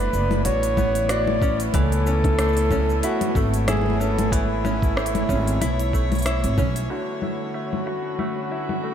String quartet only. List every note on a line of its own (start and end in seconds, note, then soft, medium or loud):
0.00 8.94 A3 medium
0.00 8.72 B3 medium
0.00 8.91 E4 medium
3.39 8.55 C#5 medium
6.90 8.94 D3 medium
7.46 8.94 C#4 medium
7.51 8.94 B4 medium
7.81 8.94 F#4 medium
8.50 8.94 E5 medium